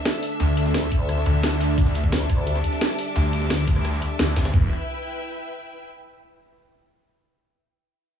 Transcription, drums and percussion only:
0.05 snare loud
0.05 closed hi-hat medium
0.14 cross-stick soft
0.23 closed hi-hat medium
0.23 open hi-hat medium
0.31 closed hi-hat soft
0.40 closed hi-hat medium
0.49 closed hi-hat soft
0.57 closed hi-hat loud
0.57 closed hi-hat medium
0.66 snare soft
0.74 snare loud
0.74 closed hi-hat medium
0.83 snare soft
0.92 kick loud
0.92 closed hi-hat medium
1.09 cross-stick soft
1.09 closed hi-hat medium
1.18 snare soft
1.26 closed hi-hat medium
1.35 closed hi-hat soft
1.43 snare loud
1.43 closed hi-hat medium
1.61 closed hi-hat medium
1.61 open hi-hat medium
1.78 kick loud
1.78 closed hi-hat medium
1.87 snare soft
1.95 closed hi-hat medium
1.95 closed hi-hat loud
2.04 kick medium
2.12 snare loud
2.12 closed hi-hat medium
2.21 closed hi-hat soft
2.30 kick loud
2.30 cross-stick soft
2.30 closed hi-hat medium
2.30 closed hi-hat loud
2.38 cross-stick soft
2.47 closed hi-hat medium
2.55 snare medium
2.64 closed hi-hat medium
2.73 snare soft
2.81 snare loud
2.81 closed hi-hat medium
2.90 cross-stick soft
2.99 closed hi-hat medium
2.99 open hi-hat medium
3.07 closed hi-hat soft
3.16 closed hi-hat medium
3.24 closed hi-hat soft
3.33 closed hi-hat medium
3.33 closed hi-hat loud
3.42 snare soft
3.50 snare loud
3.50 closed hi-hat medium
3.59 snare soft
3.68 kick loud
3.68 closed hi-hat medium
3.68 closed hi-hat loud
3.76 cross-stick soft
3.85 cross-stick soft
3.85 closed hi-hat medium
3.93 snare soft
4.02 closed hi-hat loud
4.02 closed hi-hat medium
4.11 closed hi-hat soft
4.19 snare loud
4.19 closed hi-hat medium
4.28 snare soft
4.36 kick medium
4.36 snare soft
4.36 snare loud
4.36 closed hi-hat medium
4.36 open hi-hat medium
4.45 snare loud
4.45 closed hi-hat medium
4.54 kick loud
4.54 floor tom loud

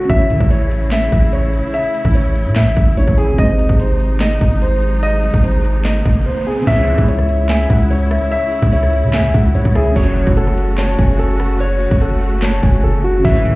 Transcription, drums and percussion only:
0.10 kick loud
0.10 closed hi-hat medium
0.30 closed hi-hat medium
0.40 kick medium
0.51 closed hi-hat medium
0.71 closed hi-hat medium
0.92 snare loud
0.92 clap loud
0.92 closed hi-hat medium
1.12 kick loud
1.12 closed hi-hat medium
1.33 closed hi-hat medium
1.53 closed hi-hat medium
1.74 closed hi-hat medium
1.95 closed hi-hat medium
2.05 kick medium
2.15 closed hi-hat medium
2.36 closed hi-hat medium
2.56 snare loud
2.56 clap loud
2.56 closed hi-hat medium
2.77 kick loud
2.77 closed hi-hat medium
2.97 closed hi-hat medium
3.08 kick medium
3.18 closed hi-hat medium
3.38 kick loud
3.38 closed hi-hat medium
3.59 closed hi-hat medium
3.69 kick medium
3.79 closed hi-hat medium
4.00 closed hi-hat medium
4.21 snare loud
4.21 clap loud
4.21 closed hi-hat medium
4.41 kick loud
4.41 closed hi-hat medium
4.62 closed hi-hat medium
4.82 closed hi-hat medium
5.03 closed hi-hat medium
5.23 closed hi-hat medium
5.30 kick loud
5.30 closed hi-hat medium
5.37 closed hi-hat soft
5.44 closed hi-hat medium
5.64 closed hi-hat medium
5.85 snare loud
5.85 clap loud
5.85 closed hi-hat medium
6.05 kick loud
6.05 closed hi-hat medium
6.67 kick loud
6.67 closed hi-hat medium
6.67 crash loud
6.88 closed hi-hat medium
6.98 kick loud
7.08 closed hi-hat medium
7.19 cross-stick medium
7.29 closed hi-hat medium
7.49 snare loud
7.49 clap loud
7.49 closed hi-hat medium
7.70 kick loud
7.70 closed hi-hat medium
7.90 closed hi-hat medium
8.11 cross-stick medium
8.11 closed hi-hat medium
8.31 closed hi-hat medium
8.52 closed hi-hat medium
8.62 kick loud
8.73 closed hi-hat medium
8.83 cross-stick medium
8.93 closed hi-hat medium
9.14 snare loud
9.14 clap loud
9.14 closed hi-hat medium
9.34 kick loud
9.34 closed hi-hat medium
9.55 closed hi-hat medium
9.65 kick medium
9.75 cross-stick loud
9.75 closed hi-hat medium
9.96 kick loud
9.96 closed hi-hat medium
10.16 closed hi-hat medium
10.27 kick medium
10.37 closed hi-hat medium
10.47 cross-stick medium
10.58 closed hi-hat medium
10.78 snare loud
10.78 clap loud
10.78 closed hi-hat medium
10.99 kick loud
10.99 closed hi-hat medium
11.19 closed hi-hat medium
11.40 cross-stick loud
11.40 closed hi-hat medium
11.91 kick loud
12.42 snare loud
12.42 clap loud
12.63 kick loud
13.25 kick loud
13.25 closed hi-hat medium
13.45 closed hi-hat medium

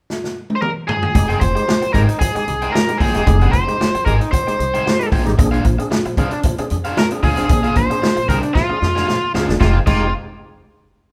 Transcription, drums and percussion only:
0.10 snare medium
0.24 snare soft
0.50 high tom medium
0.62 mid tom medium
0.89 floor tom loud
1.03 floor tom medium
1.15 kick loud
1.15 closed hi-hat medium
1.30 closed hi-hat soft
1.41 kick medium
1.41 closed hi-hat medium
1.56 closed hi-hat medium
1.69 snare loud
1.82 closed hi-hat medium
1.94 kick medium
1.94 closed hi-hat medium
2.09 closed hi-hat medium
2.21 kick loud
2.21 closed hi-hat loud
2.36 closed hi-hat medium
2.48 closed hi-hat medium
2.62 closed hi-hat soft
2.75 snare loud
2.88 closed hi-hat medium
3.00 kick medium
3.00 open hi-hat medium
3.14 snare soft
3.14 closed hi-hat medium
3.27 kick loud
3.27 closed hi-hat medium
3.41 closed hi-hat soft
3.53 kick medium
3.53 closed hi-hat medium
3.68 closed hi-hat soft
3.81 snare loud
3.95 closed hi-hat medium
4.06 kick medium
4.06 closed hi-hat medium
4.21 closed hi-hat soft
4.33 kick medium
4.33 closed hi-hat loud
4.48 closed hi-hat medium
4.60 closed hi-hat medium
4.74 closed hi-hat medium
4.87 snare loud
5.01 closed hi-hat medium
5.12 kick loud
5.12 open hi-hat medium
5.26 snare soft
5.26 closed hi-hat medium
5.39 kick loud
5.39 closed hi-hat medium
5.54 closed hi-hat soft
5.65 kick medium
5.65 closed hi-hat medium
5.79 closed hi-hat medium
5.92 snare loud
6.05 closed hi-hat soft
6.17 kick medium
6.17 closed hi-hat medium
6.31 closed hi-hat soft
6.43 kick loud
6.43 closed hi-hat loud
6.58 closed hi-hat medium
6.70 closed hi-hat medium
6.84 closed hi-hat medium
6.97 snare loud
7.11 closed hi-hat medium
7.23 kick loud
7.23 open hi-hat medium
7.37 snare soft
7.37 closed hi-hat medium
7.49 kick loud
7.49 closed hi-hat loud
7.64 closed hi-hat soft
7.75 kick medium
7.75 closed hi-hat medium
7.91 closed hi-hat medium
8.03 snare loud
8.17 closed hi-hat medium
8.29 kick medium
8.29 closed hi-hat medium
8.43 closed hi-hat medium
8.55 kick loud
8.55 snare medium
8.82 snare medium
8.96 snare medium
9.09 snare medium
9.35 snare loud
9.49 snare medium
9.61 kick loud
9.61 snare medium
9.87 kick loud
9.87 crash medium

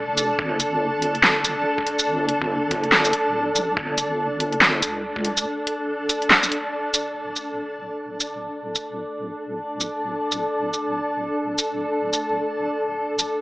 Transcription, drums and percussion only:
0.17 closed hi-hat medium
0.17 shaker medium
0.39 kick loud
0.60 closed hi-hat medium
0.60 shaker medium
1.02 closed hi-hat medium
1.15 closed hi-hat soft
1.23 snare loud
1.23 clap medium
1.44 closed hi-hat medium
1.44 shaker medium
1.78 kick medium
1.87 closed hi-hat medium
1.99 shaker medium
2.29 closed hi-hat medium
2.42 kick medium
2.71 kick loud
2.71 closed hi-hat medium
2.84 closed hi-hat soft
2.92 snare loud
2.92 clap medium
3.05 shaker medium
3.13 closed hi-hat medium
3.56 closed hi-hat medium
3.56 shaker medium
3.77 kick loud
3.98 closed hi-hat medium
3.98 shaker medium
4.40 closed hi-hat medium
4.53 closed hi-hat soft
4.61 snare loud
4.61 clap medium
4.82 closed hi-hat medium
4.82 shaker medium
5.16 kick medium
5.25 closed hi-hat medium
5.37 shaker medium
5.67 closed hi-hat medium
6.09 closed hi-hat medium
6.09 shaker medium
6.22 closed hi-hat soft
6.30 snare loud
6.30 clap loud
6.43 snare soft
6.43 shaker medium
6.52 closed hi-hat medium
6.94 closed hi-hat medium
6.94 shaker medium
7.36 shaker medium
8.20 shaker medium
8.75 shaker medium
9.80 shaker medium
10.32 shaker medium
10.74 shaker medium
11.58 shaker medium
12.13 shaker medium
13.19 shaker medium

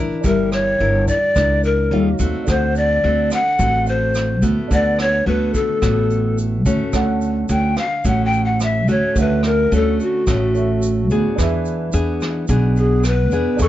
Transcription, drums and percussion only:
0.24 kick medium
0.24 closed hi-hat medium
0.24 shaker medium
0.52 cross-stick medium
0.52 closed hi-hat soft
0.52 shaker soft
0.80 closed hi-hat soft
1.07 kick soft
1.07 closed hi-hat soft
1.07 shaker medium
1.35 kick medium
1.35 cross-stick medium
1.35 closed hi-hat medium
1.35 shaker medium
1.63 closed hi-hat soft
1.63 shaker soft
1.92 closed hi-hat soft
2.19 kick medium
2.19 closed hi-hat soft
2.19 shaker medium
2.47 kick medium
2.47 cross-stick medium
2.47 closed hi-hat medium
2.47 shaker medium
2.75 closed hi-hat soft
2.75 shaker soft
3.04 closed hi-hat soft
3.31 cross-stick soft
3.31 closed hi-hat soft
3.31 shaker medium
3.59 kick medium
3.59 closed hi-hat soft
3.59 shaker medium
3.86 closed hi-hat soft
3.86 shaker soft
4.14 cross-stick medium
4.14 closed hi-hat soft
4.14 shaker medium
4.43 kick soft
4.43 closed hi-hat soft
4.43 shaker medium
4.71 kick medium
4.71 closed hi-hat medium
4.71 shaker medium
4.99 cross-stick medium
4.99 closed hi-hat soft
4.99 shaker soft
5.26 closed hi-hat soft
5.54 kick soft
5.54 closed hi-hat soft
5.54 shaker medium
5.82 kick medium
5.82 cross-stick medium
5.82 closed hi-hat medium
5.82 shaker medium
6.10 closed hi-hat soft
6.10 shaker soft
6.38 closed hi-hat soft
6.38 shaker medium
6.65 kick medium
6.65 closed hi-hat soft
6.65 shaker medium
6.93 kick medium
6.93 cross-stick medium
6.93 closed hi-hat soft
6.93 shaker medium
7.21 closed hi-hat soft
7.21 shaker soft
7.49 closed hi-hat soft
7.49 shaker medium
7.76 cross-stick medium
7.76 closed hi-hat soft
7.76 shaker soft
8.05 kick medium
8.05 closed hi-hat soft
8.05 shaker medium
8.33 closed hi-hat soft
8.33 shaker soft
8.60 cross-stick medium
8.60 closed hi-hat soft
8.60 shaker medium
8.88 closed hi-hat soft
8.88 shaker soft
9.16 kick medium
9.16 closed hi-hat soft
9.16 shaker medium
9.43 cross-stick medium
9.43 closed hi-hat soft
9.43 shaker soft
9.71 closed hi-hat soft
9.71 shaker medium
9.99 closed hi-hat soft
9.99 shaker soft
10.27 kick medium
10.27 cross-stick medium
10.27 closed hi-hat soft
10.27 shaker medium
10.54 closed hi-hat soft
10.54 shaker soft
10.82 closed hi-hat soft
10.82 shaker medium
11.10 closed hi-hat soft
11.10 shaker soft
11.38 kick medium
11.38 cross-stick medium
11.38 closed hi-hat soft
11.38 shaker medium
11.65 closed hi-hat soft
11.65 shaker soft
11.92 closed hi-hat soft
11.92 shaker medium
12.21 cross-stick medium
12.21 closed hi-hat soft
12.21 shaker soft
12.48 kick medium
12.48 closed hi-hat soft
12.48 shaker medium
12.76 closed hi-hat soft
12.76 shaker soft
13.04 cross-stick medium
13.04 closed hi-hat soft
13.04 shaker medium
13.31 closed hi-hat soft
13.31 shaker soft
13.59 kick medium
13.59 closed hi-hat soft
13.59 shaker medium

